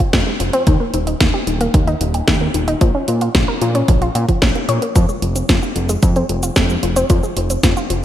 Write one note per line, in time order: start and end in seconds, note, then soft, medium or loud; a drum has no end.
0.00 0.13 F4 medium
0.00 kick medium
0.00 closed hi-hat medium
0.13 0.24 F2 medium
0.13 0.25 F3 medium
0.13 kick loud
0.13 snare loud
0.13 closed hi-hat medium
0.27 0.39 G#3 medium
0.40 0.51 F1 medium
0.40 0.52 F3 medium
0.40 closed hi-hat medium
0.53 0.65 C4 loud
0.53 closed hi-hat medium
0.67 0.77 D#2 medium
0.67 0.78 D#3 loud
0.67 kick loud
0.67 closed hi-hat medium
0.80 0.92 A#3 medium
0.94 1.15 D#1 medium
0.94 1.05 D#3 medium
0.94 closed hi-hat medium
1.07 1.20 D#4 medium
1.07 closed hi-hat soft
1.20 1.31 D#2 medium
1.20 1.32 D#3 medium
1.20 kick loud
1.20 snare loud
1.20 closed hi-hat medium
1.34 1.47 G4 medium
1.47 1.68 D#1 medium
1.47 1.54 D#3 medium
1.47 closed hi-hat medium
1.61 1.72 A#3 loud
1.61 closed hi-hat medium
1.74 1.95 D#2 medium
1.74 1.81 D#3 medium
1.74 kick loud
1.74 closed hi-hat medium
1.87 1.94 D#4 loud
1.87 closed hi-hat soft
2.01 2.22 D#1 medium
2.01 2.12 D#3 medium
2.01 closed hi-hat medium
2.14 2.27 G4 medium
2.14 closed hi-hat soft
2.28 2.49 D#2 medium
2.28 2.39 D#3 medium
2.28 kick loud
2.28 snare loud
2.28 closed hi-hat medium
2.41 2.54 A#3 medium
2.54 2.75 D#1 medium
2.54 2.66 D#3 medium
2.54 closed hi-hat medium
2.68 2.79 D#4 loud
2.68 closed hi-hat soft
2.81 2.92 A#1 medium
2.81 2.93 F3 loud
2.81 kick loud
2.81 closed hi-hat medium
2.95 3.06 C#4 medium
3.08 3.29 A#2 medium
3.08 3.19 F3 medium
3.08 closed hi-hat medium
3.21 3.34 F4 medium
3.21 closed hi-hat soft
3.35 3.45 A#1 medium
3.35 3.46 F3 medium
3.35 kick loud
3.35 snare loud
3.35 closed hi-hat medium
3.48 3.61 A#4 medium
3.62 3.82 A#2 medium
3.62 3.68 F3 medium
3.62 closed hi-hat medium
3.75 3.86 C#4 loud
3.75 closed hi-hat soft
3.88 4.09 A#1 medium
3.88 3.95 F3 medium
3.88 kick loud
3.88 closed hi-hat medium
4.02 4.09 F4 loud
4.02 closed hi-hat soft
4.15 4.26 A#2 loud
4.15 4.22 F4 medium
4.15 closed hi-hat medium
4.28 4.40 F3 loud
4.28 kick medium
4.28 closed hi-hat soft
4.42 4.52 A#1 medium
4.42 4.53 C#4 medium
4.42 kick loud
4.42 snare loud
4.42 closed hi-hat medium
4.55 4.67 A#3 medium
4.55 closed hi-hat soft
4.69 4.79 A#2 medium
4.69 4.81 C#5 loud
4.69 closed hi-hat medium
4.82 4.95 A#3 loud
4.82 closed hi-hat soft
4.95 5.06 F2 medium
4.95 5.07 F3 loud
4.95 kick loud
4.95 closed hi-hat medium
4.95 cabasa medium
5.09 5.20 G#3 medium
5.09 cabasa soft
5.22 5.43 F1 medium
5.22 5.34 F3 medium
5.22 closed hi-hat medium
5.36 5.48 C4 medium
5.36 closed hi-hat soft
5.36 cabasa medium
5.49 5.60 F2 medium
5.49 5.61 F3 medium
5.49 kick loud
5.49 snare loud
5.49 closed hi-hat medium
5.49 cabasa soft
5.62 5.75 F4 medium
5.62 cabasa soft
5.76 5.97 F1 medium
5.76 5.83 F3 medium
5.76 closed hi-hat medium
5.89 6.01 G#3 loud
5.89 closed hi-hat soft
5.89 cabasa medium
6.03 6.24 F2 medium
6.03 6.10 F3 medium
6.03 kick loud
6.03 closed hi-hat medium
6.03 cabasa medium
6.16 6.23 C4 loud
6.16 closed hi-hat soft
6.16 cabasa soft
6.29 6.50 F1 medium
6.29 6.41 F3 medium
6.29 closed hi-hat medium
6.43 6.56 F4 medium
6.43 closed hi-hat soft
6.43 cabasa medium
6.56 6.77 F2 medium
6.56 6.68 F3 medium
6.56 kick loud
6.56 snare loud
6.56 closed hi-hat medium
6.56 cabasa soft
6.70 6.82 G#3 medium
6.70 cabasa soft
6.83 7.04 F1 medium
6.83 6.94 F3 medium
6.83 closed hi-hat medium
6.96 7.08 C4 loud
6.96 closed hi-hat soft
6.96 cabasa medium
7.10 7.20 F2 medium
7.10 7.21 F3 loud
7.10 kick loud
7.10 closed hi-hat medium
7.10 cabasa soft
7.23 7.35 G#3 medium
7.23 cabasa soft
7.37 7.58 F1 medium
7.37 7.48 F3 medium
7.37 closed hi-hat medium
7.50 7.63 C4 medium
7.50 closed hi-hat soft
7.50 cabasa medium
7.63 7.74 F2 medium
7.63 7.75 F3 medium
7.63 kick loud
7.63 snare loud
7.63 closed hi-hat medium
7.63 cabasa soft
7.77 7.90 F4 medium
7.77 cabasa soft
7.90 8.04 F1 medium
7.90 7.97 F3 medium
7.90 closed hi-hat medium